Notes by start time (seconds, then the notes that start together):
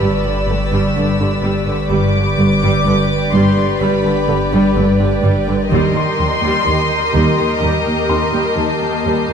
Already playing: G1 G4 B4 D5 A5 B5 C#6 B6
0.00 G2 G3 D6 E6
0.24 G2 D3
0.47 G1 G2 D3 G3
0.72 G2 G3
0.95 G1 G2 D3
1.19 G2 D3
1.43 G1 G2 G3
1.67 G2 D3
1.90 G1 G2 G3 G4 B4 D5 G5 D6
2.14 G2 D3
2.38 G1 G2 D3
2.62 G2 G3
2.85 G1 G2 D3
3.33 G1 G2 G3 C6
3.57 G2 D3
3.80 G1 G2 G3 B5
4.04 G2 D3
4.28 G1 G2 D3 G3
4.52 G2 G3
4.75 G1 G2 D3
5.00 G2 D3
5.23 G1 G2 G3
5.48 G2 D3
5.71 D#2 D#3 G3 G4 A#4 D#5 C6 D#6
5.95 D#2 D#3
6.18 D#2 C3 D#3
6.43 D#2 G3
6.66 D#2 D#3 G6
7.14 D#2 D#3 G3
7.39 D#2 D#3
7.62 D#2 D#3 G3 A#5 C7
7.86 D#2 D#3
8.09 D#2 C3 D#4 C6
8.33 D#2 G3
8.57 D#2 D#3 A5
8.81 D#2 C3
9.04 D#2 D#3 G3
9.29 D#2 D#3